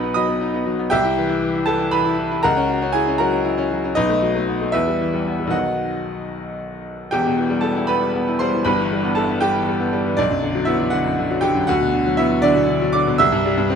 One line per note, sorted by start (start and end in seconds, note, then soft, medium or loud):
0.00 0.88 B1 medium
0.00 0.04 B3 medium
0.00 0.24 B3 medium
0.00 0.12 D#4 medium
0.00 0.94 F#4 medium
0.00 0.13 B4 medium
0.00 0.16 D#5 medium
0.00 0.13 F#5 medium
0.00 0.16 B5 loud
0.00 0.14 D#6 loud
0.14 0.36 F#3 medium
0.14 0.39 D#5 medium
0.14 0.39 B5 medium
0.14 0.40 D#6 loud
0.28 0.49 B3 medium
0.41 0.61 D#4 medium
0.54 0.74 B3 medium
0.66 0.87 F#3 medium
0.79 0.92 B3 medium
0.90 2.39 C2 loud
0.90 1.63 G4 loud
0.90 1.63 E5 loud
0.90 1.67 G5 loud
1.04 1.25 E4 medium
1.17 1.37 E3 medium
1.29 1.50 E4 medium
1.42 1.62 E3 medium
1.55 1.75 E4 medium
1.66 1.88 E3 medium
1.66 1.91 A4 medium
1.66 1.92 A5 loud
1.79 2.00 E4 medium
1.91 2.13 E3 medium
1.91 2.40 B4 medium
1.91 2.43 B5 loud
2.06 2.26 E4 medium
2.18 2.38 E3 medium
2.32 2.44 E4 medium
2.43 3.92 C#2 loud
2.43 2.90 A#4 loud
2.43 2.91 F#5 loud
2.43 2.94 A#5 loud
2.57 2.76 C#4 medium
2.69 2.89 F#4 medium
2.82 3.02 C#4 medium
2.92 3.14 E4 medium
2.92 3.17 G#4 medium
2.92 3.19 G#5 loud
3.08 3.27 C#4 medium
3.18 3.40 F#3 medium
3.18 3.92 A#4 medium
3.18 3.92 F#5 medium
3.18 3.95 A#5 loud
3.33 3.53 C#4 medium
3.45 3.65 E4 medium
3.58 3.78 C#4 medium
3.71 3.91 F#3 medium
3.84 3.96 C#4 medium
3.95 4.72 B1 loud
3.95 4.70 D#4 medium
3.95 4.70 B4 medium
3.95 4.73 D#5 loud
4.09 4.30 A3 medium
4.22 4.43 F#3 medium
4.35 4.56 A3 medium
4.48 4.69 B3 medium
4.62 4.74 A3 medium
4.72 5.51 E2 medium
4.72 5.49 E4 medium
4.72 5.49 B4 medium
4.72 5.52 E5 loud
4.87 5.08 G3 medium
5.01 5.21 E3 medium
5.14 5.34 G3 medium
5.27 5.48 B3 medium
5.40 5.53 G3 medium
5.47 7.06 B1 medium
5.47 7.06 D#3 medium
5.47 7.07 F#3 medium
5.47 7.08 B3 medium
5.47 6.85 F#5 loud
5.52 6.82 F#4 medium
5.52 6.82 D#5 medium
7.11 8.61 E1 medium
7.11 8.62 E2 medium
7.11 7.60 G4 medium
7.11 7.63 G5 loud
7.26 7.46 B2 medium
7.37 7.58 E3 medium
7.50 7.71 G3 medium
7.61 7.84 B3 medium
7.61 7.87 A4 medium
7.61 7.88 A5 loud
7.77 7.97 E4 medium
7.87 8.10 B3 medium
7.87 8.36 B4 medium
7.87 8.39 B5 loud
8.02 8.22 G3 medium
8.15 8.35 B3 medium
8.28 8.48 E4 medium
8.39 8.61 G3 medium
8.39 8.64 C5 medium
8.39 8.65 C6 loud
8.54 8.66 E3 medium
8.65 10.13 G1 medium
8.65 10.14 G2 medium
8.65 9.13 B4 medium
8.65 9.16 B5 loud
8.79 8.99 E3 medium
8.92 9.12 G3 medium
9.04 9.24 B3 medium
9.15 9.37 E4 medium
9.15 9.40 A4 medium
9.15 9.41 A5 loud
9.29 9.49 B3 medium
9.41 9.62 G3 medium
9.41 10.13 G4 medium
9.41 10.17 G5 loud
9.55 9.75 E3 medium
9.68 9.87 G3 medium
9.80 10.00 B3 medium
9.93 10.13 G3 medium
10.06 10.18 E3 medium
10.17 11.65 B1 loud
10.17 10.64 D4 medium
10.17 10.67 D5 loud
10.31 10.50 F#2 medium
10.42 10.63 D3 medium
10.55 10.75 F#3 medium
10.65 10.88 B3 medium
10.65 10.91 E4 medium
10.65 10.92 E5 loud
10.80 11.00 F#3 medium
10.90 11.13 D3 medium
10.90 11.39 F#4 medium
10.90 11.42 F#5 loud
11.06 11.26 F#2 medium
11.19 11.38 D3 medium
11.30 11.51 F#3 medium
11.41 11.63 D3 medium
11.41 11.66 G4 medium
11.41 11.67 G5 loud
11.55 11.68 F#2 medium
11.67 13.15 D2 loud
11.67 12.15 F#4 loud
11.67 12.18 F#5 loud
11.81 12.01 B2 medium
11.94 12.14 D3 medium
12.06 12.26 F#3 medium
12.17 12.39 B3 medium
12.17 12.42 E4 medium
12.17 12.43 E5 loud
12.31 12.51 F#3 medium
12.42 12.64 D3 medium
12.42 12.90 D4 loud
12.42 12.92 D5 loud
12.56 12.76 B2 medium
12.68 12.89 D3 medium
12.82 13.02 F#3 medium
12.93 13.14 D3 medium
12.93 13.17 D5 medium
12.93 13.18 D6 loud
13.07 13.19 B2 medium
13.18 13.75 C2 loud
13.18 13.75 E5 loud
13.18 13.75 E6 loud
13.32 13.52 G2 medium
13.45 13.65 G3 medium
13.58 13.75 G2 medium
13.70 13.75 C4 medium